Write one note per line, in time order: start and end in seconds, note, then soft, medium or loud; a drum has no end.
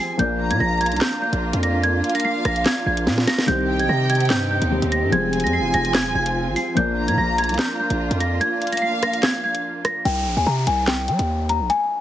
0.00 0.15 F3 medium
0.00 0.18 F3 medium
0.00 0.16 G3 medium
0.00 0.15 G#3 medium
0.00 0.16 C4 medium
0.00 0.17 C5 medium
0.00 0.15 G#5 loud
0.00 0.18 G#5 medium
0.00 0.17 C7 medium
0.17 0.52 A#1 loud
0.17 3.43 F3 medium
0.17 3.43 A#3 medium
0.17 3.45 A#3 medium
0.17 3.44 D4 medium
0.17 3.45 D4 medium
0.17 3.45 F4 medium
0.17 3.44 A#4 medium
0.17 3.45 D5 medium
0.17 0.49 G6 loud
0.17 closed hi-hat medium
0.40 1.38 A#5 medium
0.51 0.60 A#2 loud
0.51 0.59 G#6 medium
0.51 closed hi-hat medium
0.60 0.93 A#1 loud
0.60 0.79 A#6 medium
0.81 0.99 G#6 medium
0.81 closed hi-hat medium
0.86 closed hi-hat medium
0.92 1.01 C2 loud
0.92 closed hi-hat medium
0.96 closed hi-hat soft
1.01 1.20 G6 medium
1.01 snare loud
1.01 clap medium
1.01 closed hi-hat medium
1.22 1.61 G6 medium
1.33 1.52 A#1 loud
1.33 closed hi-hat medium
1.53 2.02 F2 loud
1.53 closed hi-hat medium
1.63 1.81 A#6 medium
1.63 closed hi-hat medium
1.83 2.13 G#6 loud
1.83 closed hi-hat medium
2.04 3.03 F5 medium
2.04 closed hi-hat soft
2.10 closed hi-hat medium
2.15 2.24 A#6 medium
2.15 closed hi-hat medium
2.20 closed hi-hat medium
2.25 2.43 C7 medium
2.45 2.65 A#1 loud
2.45 2.64 A#6 medium
2.45 cross-stick medium
2.45 closed hi-hat medium
2.56 closed hi-hat medium
2.66 2.84 G#6 medium
2.66 snare loud
2.66 clap medium
2.66 closed hi-hat medium
2.86 3.08 A#1 loud
2.86 3.25 G#6 medium
2.97 closed hi-hat medium
3.07 3.26 A#2 loud
3.07 snare medium
3.18 snare medium
3.27 3.46 A#6 medium
3.27 snare loud
3.27 closed hi-hat medium
3.38 snare loud
3.46 3.81 C2 loud
3.46 5.11 C3 medium
3.46 4.68 D#3 medium
3.46 4.68 G3 medium
3.46 6.73 C4 medium
3.46 4.69 C4 medium
3.46 5.11 D#4 medium
3.46 5.11 G4 medium
3.46 4.69 G4 medium
3.46 4.70 C5 medium
3.46 3.77 G6 loud
3.46 closed hi-hat medium
3.69 4.67 G5 medium
3.79 3.89 A#1 loud
3.79 3.88 G#6 medium
3.79 closed hi-hat medium
3.89 4.32 C3 loud
3.89 4.07 A#6 medium
4.10 4.28 G#6 medium
4.10 closed hi-hat medium
4.15 closed hi-hat medium
4.20 closed hi-hat medium
4.25 closed hi-hat soft
4.30 4.60 G2 loud
4.30 4.49 G6 medium
4.30 snare loud
4.30 clap medium
4.30 closed hi-hat medium
4.51 4.89 G6 medium
4.62 4.81 D#2 loud
4.62 closed hi-hat medium
4.70 5.12 D#3 medium
4.70 5.12 G3 medium
4.70 5.11 C4 medium
4.70 5.12 G4 medium
4.70 5.12 C5 medium
4.82 5.04 D#2 loud
4.82 closed hi-hat medium
4.92 5.10 A#6 medium
4.92 closed hi-hat medium
5.03 5.12 G2 loud
5.11 5.45 F1 loud
5.11 6.73 F3 medium
5.11 6.75 F3 medium
5.11 6.74 G3 medium
5.11 6.73 G#3 medium
5.11 6.73 C4 medium
5.11 6.75 F4 medium
5.11 6.74 C5 medium
5.11 6.75 G#5 medium
5.11 5.42 G#6 loud
5.11 closed hi-hat medium
5.33 6.73 G#5 medium
5.33 closed hi-hat soft
5.40 5.60 F2 loud
5.40 closed hi-hat medium
5.44 5.52 A#6 medium
5.44 closed hi-hat medium
5.53 5.72 C7 medium
5.59 5.73 F1 loud
5.74 6.07 F1 loud
5.74 5.92 A#6 medium
5.74 closed hi-hat medium
5.85 closed hi-hat medium
5.94 6.13 G#6 medium
5.94 snare loud
5.94 clap loud
5.94 closed hi-hat medium
6.05 6.15 D#1 loud
6.15 6.48 F1 loud
6.15 6.54 G#6 medium
6.26 closed hi-hat medium
6.47 6.56 G#1 loud
6.56 6.75 C7 medium
6.56 open hi-hat medium
6.75 7.10 A#1 loud
6.75 10.01 F3 medium
6.75 10.01 A#3 medium
6.75 10.02 A#3 medium
6.75 10.01 D4 medium
6.75 10.02 D4 medium
6.75 10.02 F4 medium
6.75 10.02 A#4 medium
6.75 10.02 D5 medium
6.75 7.06 G6 loud
6.75 closed hi-hat medium
6.97 7.96 A#5 medium
7.08 7.17 A#2 loud
7.08 7.17 G#6 medium
7.08 closed hi-hat medium
7.18 7.51 A#1 loud
7.18 7.36 A#6 medium
7.38 7.57 G#6 medium
7.38 closed hi-hat medium
7.44 closed hi-hat medium
7.49 7.58 C2 loud
7.49 closed hi-hat medium
7.54 closed hi-hat soft
7.59 7.77 G6 medium
7.59 snare loud
7.59 clap medium
7.59 closed hi-hat medium
7.80 8.18 G6 medium
7.90 8.10 A#1 loud
7.90 closed hi-hat medium
8.11 8.40 F2 loud
8.11 closed hi-hat medium
8.20 8.39 A#6 medium
8.20 closed hi-hat medium
8.41 8.70 G#6 loud
8.41 closed hi-hat medium
8.62 9.60 F5 medium
8.62 closed hi-hat soft
8.67 closed hi-hat medium
8.72 8.81 A#6 medium
8.72 closed hi-hat medium
8.77 closed hi-hat medium
8.82 9.00 C7 medium
9.03 9.21 A#6 medium
9.03 cross-stick medium
9.03 closed hi-hat medium
9.13 closed hi-hat medium
9.23 9.42 G#6 medium
9.23 snare loud
9.23 clap medium
9.23 closed hi-hat medium
9.44 9.82 G#6 medium
9.55 closed hi-hat medium
9.85 10.03 A#6 medium
9.85 cross-stick loud
9.85 closed hi-hat medium
10.05 10.27 C2 loud
10.05 10.35 G5 medium
10.05 closed hi-hat medium
10.05 downlifter medium
10.26 10.36 A#1 loud
10.37 10.46 D#2 loud
10.37 10.46 G#5 medium
10.46 10.66 C3 loud
10.46 10.65 A#5 medium
10.67 11.10 C2 loud
10.67 10.85 G#5 medium
10.67 closed hi-hat medium
10.87 11.06 G5 medium
10.87 snare loud
10.87 clap medium
10.87 closed hi-hat medium
11.08 11.19 G3 loud
11.08 11.47 G5 medium
11.08 closed hi-hat medium
11.19 11.62 D#2 loud
11.19 closed hi-hat medium
11.49 11.68 A#5 medium
11.49 closed hi-hat medium
11.60 11.69 A#1 loud
11.70 11.99 G#5 loud
11.70 closed hi-hat medium